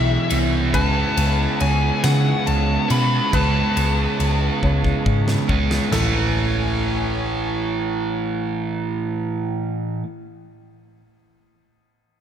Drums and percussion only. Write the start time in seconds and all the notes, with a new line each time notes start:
0.30 ride
0.74 kick, ride
1.17 ride
1.60 ride
2.04 snare, ride
2.47 ride
2.90 ride
3.33 kick, ride
3.77 ride
4.20 ride
4.63 kick
4.84 kick
5.06 kick
5.28 snare
5.49 kick
5.71 snare
5.92 snare, floor tom, crash